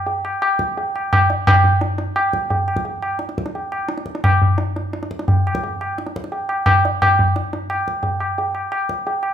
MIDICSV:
0, 0, Header, 1, 2, 480
1, 0, Start_track
1, 0, Tempo, 349447
1, 65, Time_signature, 4, 2, 24, 8
1, 6304, Tempo, 343643
1, 12935, End_track
2, 0, Start_track
2, 0, Title_t, "Tabla"
2, 90, Note_on_c, 9, 63, 74
2, 227, Note_off_c, 9, 63, 0
2, 340, Note_on_c, 9, 60, 68
2, 477, Note_off_c, 9, 60, 0
2, 577, Note_on_c, 9, 60, 75
2, 714, Note_off_c, 9, 60, 0
2, 814, Note_on_c, 9, 37, 62
2, 951, Note_off_c, 9, 37, 0
2, 1065, Note_on_c, 9, 63, 80
2, 1202, Note_off_c, 9, 63, 0
2, 1313, Note_on_c, 9, 60, 61
2, 1450, Note_off_c, 9, 60, 0
2, 1547, Note_on_c, 9, 60, 93
2, 1547, Note_on_c, 9, 64, 73
2, 1685, Note_off_c, 9, 60, 0
2, 1685, Note_off_c, 9, 64, 0
2, 1785, Note_on_c, 9, 62, 58
2, 1922, Note_off_c, 9, 62, 0
2, 2022, Note_on_c, 9, 60, 113
2, 2022, Note_on_c, 9, 64, 98
2, 2160, Note_off_c, 9, 60, 0
2, 2160, Note_off_c, 9, 64, 0
2, 2254, Note_on_c, 9, 64, 82
2, 2392, Note_off_c, 9, 64, 0
2, 2490, Note_on_c, 9, 62, 77
2, 2628, Note_off_c, 9, 62, 0
2, 2724, Note_on_c, 9, 62, 67
2, 2862, Note_off_c, 9, 62, 0
2, 2965, Note_on_c, 9, 60, 77
2, 3103, Note_off_c, 9, 60, 0
2, 3206, Note_on_c, 9, 37, 57
2, 3343, Note_off_c, 9, 37, 0
2, 3439, Note_on_c, 9, 63, 83
2, 3439, Note_on_c, 9, 64, 86
2, 3577, Note_off_c, 9, 63, 0
2, 3577, Note_off_c, 9, 64, 0
2, 3679, Note_on_c, 9, 60, 54
2, 3797, Note_on_c, 9, 37, 66
2, 3817, Note_off_c, 9, 60, 0
2, 3917, Note_on_c, 9, 63, 76
2, 3934, Note_off_c, 9, 37, 0
2, 4054, Note_off_c, 9, 63, 0
2, 4155, Note_on_c, 9, 60, 63
2, 4292, Note_off_c, 9, 60, 0
2, 4382, Note_on_c, 9, 62, 73
2, 4518, Note_off_c, 9, 62, 0
2, 4518, Note_on_c, 9, 62, 62
2, 4641, Note_on_c, 9, 37, 71
2, 4655, Note_off_c, 9, 62, 0
2, 4749, Note_on_c, 9, 62, 62
2, 4778, Note_off_c, 9, 37, 0
2, 4879, Note_on_c, 9, 63, 77
2, 4887, Note_off_c, 9, 62, 0
2, 5016, Note_off_c, 9, 63, 0
2, 5110, Note_on_c, 9, 60, 60
2, 5247, Note_off_c, 9, 60, 0
2, 5337, Note_on_c, 9, 62, 88
2, 5461, Note_off_c, 9, 62, 0
2, 5461, Note_on_c, 9, 62, 57
2, 5573, Note_on_c, 9, 37, 54
2, 5598, Note_off_c, 9, 62, 0
2, 5699, Note_on_c, 9, 62, 68
2, 5710, Note_off_c, 9, 37, 0
2, 5823, Note_on_c, 9, 60, 111
2, 5823, Note_on_c, 9, 64, 85
2, 5837, Note_off_c, 9, 62, 0
2, 5960, Note_off_c, 9, 60, 0
2, 5960, Note_off_c, 9, 64, 0
2, 6067, Note_on_c, 9, 64, 69
2, 6205, Note_off_c, 9, 64, 0
2, 6290, Note_on_c, 9, 62, 77
2, 6430, Note_off_c, 9, 62, 0
2, 6546, Note_on_c, 9, 62, 64
2, 6686, Note_off_c, 9, 62, 0
2, 6784, Note_on_c, 9, 62, 82
2, 6916, Note_off_c, 9, 62, 0
2, 6916, Note_on_c, 9, 62, 59
2, 7029, Note_on_c, 9, 37, 59
2, 7055, Note_off_c, 9, 62, 0
2, 7147, Note_on_c, 9, 62, 66
2, 7169, Note_off_c, 9, 37, 0
2, 7268, Note_on_c, 9, 63, 83
2, 7268, Note_on_c, 9, 64, 86
2, 7287, Note_off_c, 9, 62, 0
2, 7408, Note_off_c, 9, 63, 0
2, 7408, Note_off_c, 9, 64, 0
2, 7533, Note_on_c, 9, 60, 60
2, 7643, Note_on_c, 9, 37, 70
2, 7673, Note_off_c, 9, 60, 0
2, 7766, Note_on_c, 9, 63, 81
2, 7783, Note_off_c, 9, 37, 0
2, 7905, Note_off_c, 9, 63, 0
2, 8009, Note_on_c, 9, 60, 66
2, 8149, Note_off_c, 9, 60, 0
2, 8251, Note_on_c, 9, 62, 76
2, 8366, Note_off_c, 9, 62, 0
2, 8366, Note_on_c, 9, 62, 59
2, 8499, Note_on_c, 9, 37, 73
2, 8505, Note_off_c, 9, 62, 0
2, 8609, Note_on_c, 9, 62, 61
2, 8638, Note_off_c, 9, 37, 0
2, 8721, Note_on_c, 9, 63, 83
2, 8748, Note_off_c, 9, 62, 0
2, 8861, Note_off_c, 9, 63, 0
2, 8960, Note_on_c, 9, 60, 55
2, 9099, Note_off_c, 9, 60, 0
2, 9196, Note_on_c, 9, 60, 94
2, 9196, Note_on_c, 9, 64, 82
2, 9335, Note_off_c, 9, 60, 0
2, 9335, Note_off_c, 9, 64, 0
2, 9463, Note_on_c, 9, 62, 61
2, 9603, Note_off_c, 9, 62, 0
2, 9698, Note_on_c, 9, 60, 103
2, 9698, Note_on_c, 9, 64, 98
2, 9837, Note_off_c, 9, 60, 0
2, 9837, Note_off_c, 9, 64, 0
2, 9939, Note_on_c, 9, 64, 78
2, 10079, Note_off_c, 9, 64, 0
2, 10173, Note_on_c, 9, 62, 79
2, 10313, Note_off_c, 9, 62, 0
2, 10414, Note_on_c, 9, 62, 67
2, 10554, Note_off_c, 9, 62, 0
2, 10647, Note_on_c, 9, 60, 78
2, 10787, Note_off_c, 9, 60, 0
2, 10896, Note_on_c, 9, 37, 59
2, 11035, Note_off_c, 9, 37, 0
2, 11107, Note_on_c, 9, 63, 90
2, 11107, Note_on_c, 9, 64, 80
2, 11246, Note_off_c, 9, 63, 0
2, 11246, Note_off_c, 9, 64, 0
2, 11353, Note_on_c, 9, 60, 55
2, 11493, Note_off_c, 9, 60, 0
2, 11602, Note_on_c, 9, 63, 75
2, 11742, Note_off_c, 9, 63, 0
2, 11831, Note_on_c, 9, 60, 60
2, 11971, Note_off_c, 9, 60, 0
2, 12072, Note_on_c, 9, 60, 76
2, 12211, Note_off_c, 9, 60, 0
2, 12316, Note_on_c, 9, 37, 65
2, 12456, Note_off_c, 9, 37, 0
2, 12558, Note_on_c, 9, 63, 83
2, 12698, Note_off_c, 9, 63, 0
2, 12783, Note_on_c, 9, 60, 63
2, 12923, Note_off_c, 9, 60, 0
2, 12935, End_track
0, 0, End_of_file